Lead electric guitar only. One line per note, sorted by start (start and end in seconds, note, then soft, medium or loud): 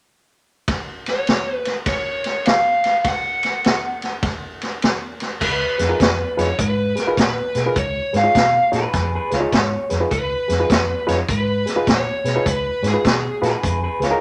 1.09 1.55 C#5 medium
1.55 1.67 B4 medium
1.67 1.72 B4 medium
1.87 2.48 C#5 medium
2.46 3.07 F5 medium
3.08 5.17 F#5 medium
5.42 6.34 B4 medium
6.40 6.59 C#5 medium
6.60 6.99 B4 medium
6.99 7.14 A#4 medium
7.19 7.62 B4 medium
7.62 7.78 A#4 medium
7.78 8.13 C#5 medium
8.17 8.70 F5 medium
10.12 11.09 B4 medium
11.09 11.15 C#5 medium
11.30 11.89 B4 medium
11.89 12.48 C#5 medium
12.48 12.86 B4 medium
12.88 13.40 G#4 medium